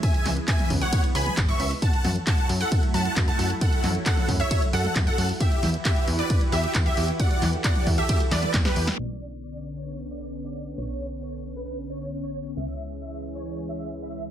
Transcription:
<<
  \new Staff \with { instrumentName = "Synth pluck" } { \time 4/4 \key b \minor \tempo 4 = 134 gis''8 r8 gis''8 r16 fis''8 r16 b''8 r16 cis'''8 r16 | a''8 r8 a''8 r16 fis''8 r16 a''8 r16 a''8 r16 | fis''8 r8 fis''8 r16 e''8 r16 fis''8 r16 fis''8 r16 | e''8 r8 e''8 r16 d''8 r16 e''8 r16 e''8 r16 |
fis''8 r8 fis''8 r16 e''8 r16 d''8 r16 b'8 r16 | r1 | r1 | r1 | }
  \new Staff \with { instrumentName = "Supersaw synth" } { \time 4/4 \key b \minor <e'' gis''>8 r8 <e'' gis''>8 r16 <cis'' fis''>8 r16 <gis'' b''>8 r16 <e'' cis'''>8 r16 | <fis'' a''>8 r8 <fis'' a''>8 r16 <a' fis''>8 r16 <fis'' a''>8 r16 <fis'' a''>8 r16 | <a' fis''>8 r8 <a' fis''>8 r16 <cis'' e''>8 r16 <a' fis''>8 r16 <a' fis''>8 r16 | <g' e''>8 r8 <g' e''>8 r16 <b' d''>8 r16 <g' e''>8 r16 <g' e''>8 r16 |
<d'' fis''>8 r8 <d'' fis''>8 r16 <g' e''>8 r16 <b' d''>8 r16 <g' b'>8 r16 | d''8 r8 d''8 r16 cis''8 r16 d''8 r16 d''8 r16 | cis''8 r8 cis''8 r16 b'8 r16 cis''8 r16 cis''8 r16 | e''8 r8 e''8 r16 cis''8 r16 e''8 r16 e''8 r16 | }
  \new Staff \with { instrumentName = "Analog synth pad" } { \time 4/4 \key b \minor << { b1 | e'1~ | e'1 | b'1 |
a'1 | cis'1~ | cis'1~ | cis'1 | } \\ { <e gis>1 | <fis a>1~ | <fis a>1 | <e e' fis' g'>1~ |
<e e' fis' g'>1 | <d b>1~ | <d b>1 | <e gis>1 | } >> }
  \new Staff \with { instrumentName = "Analog synth bass" } { \clef bass \time 4/4 \key b \minor r8 cis,8 r8 cis,8 r8 cis,8 gis,,8 cis,8 | r8 fis,8 r8 fis,8 r8 fis,8 fis,8 fis,8 | r8 fis,8 r8 fis,8 r8 fis,8 fis,8 fis,8 | r8 e,8 r8 e,8 r8 e,8 e,8 e,8 |
r8 e,8 r8 e,8 r8 e,8 e,8 e,8 | b,,1 | b,,1 | cis,1 | }
  \new DrumStaff \with { instrumentName = "Drums" } \drummode { \time 4/4 <hh bd cymr>16 hh16 <hc hho toml>16 hh16 <hc hh bd cymr>16 <hh toml>16 <hho bd>16 hh16 <hh bd cymr>16 hh16 hho16 <hh toml>16 <hc hh bd cymr>16 hh16 hho16 hho16 | <hh bd cymr>16 hh16 <hho toml>16 hh16 <hc hh bd cymr>16 hh16 hho16 hh16 <hh bd cymr>16 hh16 hho16 hh16 <hc hh bd cymr>16 hh16 hho16 hh16 | <hh bd cymr>16 hh16 <hc hho toml>16 hh16 <hc hh bd cymr>16 <hh toml>16 <hho bd>16 hh16 <hh bd cymr>16 hh16 hho16 <hh toml>16 <hc hh bd cymr>16 hh16 hho16 hho16 | <hh bd cymr>16 hh16 <hho toml>16 hh16 <hc hh bd cymr>16 hh16 hho16 hh16 <hh bd cymr>16 hh16 hho16 hh16 <hc hh bd cymr>16 hh16 hho16 hh16 |
<hh bd cymr>16 hh16 <hc hho toml>16 hh16 <hc hh bd cymr>16 <hh toml>16 <hho bd>16 hh16 <hh bd cymr>16 hh16 <hho sn>16 <hh toml>16 <hc hh bd cymr sn>16 <hh sn>16 hho16 <hho sn>16 | r4 r4 r4 r4 | r4 r4 r4 r4 | r4 r4 r4 r4 | }
>>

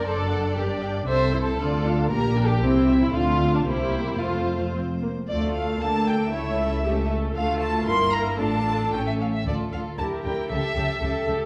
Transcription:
<<
  \new Staff \with { instrumentName = "Violin section" } { \time 2/4 \key f \major \tempo 4 = 116 d''2 | e''8 c''8 d''8 f''8 | bes''8 g''8 g''8 e''8 | f''4 c''4 |
c''4. r8 | \key d \minor d''8 f''8 a''8 g''8 | e''4. r8 | f''8 a''8 c'''8 bes''8 |
a''4 g''16 e''16 f''16 e''16 | d''8 f''8 a''8 g''8 | e''4. r8 | }
  \new Staff \with { instrumentName = "Viola section" } { \time 2/4 \key f \major << { c''16 d''16 fis''16 d''16 bes'16 d''16 g''16 d''16 | a'8 c''8 a'8 f'8 | g'8 bes'8 g'8 e'8 | f'4 g'4 |
f'4 c'8 bes8 | \key d \minor a'2 | cis''8 a'8 g'8 a'8~ | a'4 bes'4 |
a'4. r8 | r4 g'4 | a'8 g'8 a'4 | } \\ { d'2 | c'8 e'8 f'8 d'8 | bes8 d'8 e'8 c'8 | a4 bes4 |
a4 r4 | r2 | r2 | r2 |
r2 | r2 | r2 | } >> }
  \new Staff \with { instrumentName = "Violin section" } { \time 2/4 \key f \major a'4 g'8 r8 | \tuplet 3/2 { c''4 a'8~ a'8 a'4 } | \tuplet 3/2 { bes'4 g'8 } c'8. e'16 | f'8. d'16 e'4 |
f'4 r4 | \key d \minor <a f'>4 <bes d'>4 | <a e'>4 <a cis'>4 | <a f'>4 <bes e'>4 |
<d' f'>4 <cis' a'>8 r8 | <f' a'>8 <f' a'>8 <e' bes'>8 <e' bes'>8 | <g' a'>8 <g' a'>8 <g' a'>8 <g' a'>8 | }
  \new Staff \with { instrumentName = "Cello section" } { \clef bass \time 2/4 \key f \major fis,4 g,4 | c4 d4 | bes,4 c4 | d4 c4 |
f,4. r8 | \key d \minor d,4 d,4 | cis,2 | d,4 g,4 |
a,4 a,8 r8 | d8 d8 d8 d8 | cis8 cis8 cis8 cis8 | }
  \new Staff \with { instrumentName = "Double bass section" } { \clef bass \time 2/4 \key f \major fis,,4 g,,4 | c,4 d,4 | bes,,4 c,4 | d,4 c,4 |
f,,4. r8 | \key d \minor d,4 d,4 | cis,2 | d,4 g,,4 |
a,,4 a,,8 r8 | d,8 d,8 d,8 d,8 | cis,8 cis,8 cis,8 cis,8 | }
>>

